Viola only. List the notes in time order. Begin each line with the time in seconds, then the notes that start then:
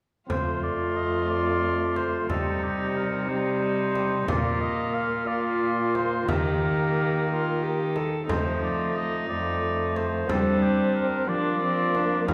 0.30 F4
2.31 D#4
3.29 D#4
4.28 F4
5.28 F4
6.28 G4
7.29 F4
7.63 G4
7.96 A4
8.29 D#4
10.30 D4
11.29 D4
11.63 C4
11.96 D4
12.29 D#4